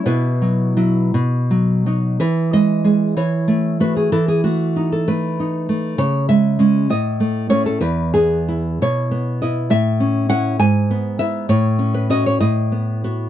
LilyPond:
\new Staff \with { instrumentName = "Nylon-string guitar" } { \time 6/8 \key e \major \tempo 4. = 64 << { <e' b'>4. r4. | b'8 dis''4 cis''4 b'16 gis'16 | a'16 gis'16 fis'8. a'16 b'4. | cis''8 e''4 dis''4 cis''16 a'16 |
b'8 gis'4 cis''4 dis''8 | e''4 fis''8 gis''4 e''8 | cis''8. b'16 dis''16 cis''16 dis''8 r4 | } \\ { b,8 fis8 <fis e'>8 b,8 fis8 <fis dis'>8 | e8 gis8 <gis gis'>8 e8 a8 <a fis'>8 | e8 a8 dis'8 a8 dis'8 a8 | cis8 gis8 <gis cis'>8 a,8 a8 <a cis'>8 |
e,8 b8 e'8 b,8 b8 e'8 | a,8 cis'8 <cis' e'>8 gis,8 b8 <b e'>8 | a,8 cis'8 <cis' fis'>8 a,8 b8 <b fis'>8 | } >> }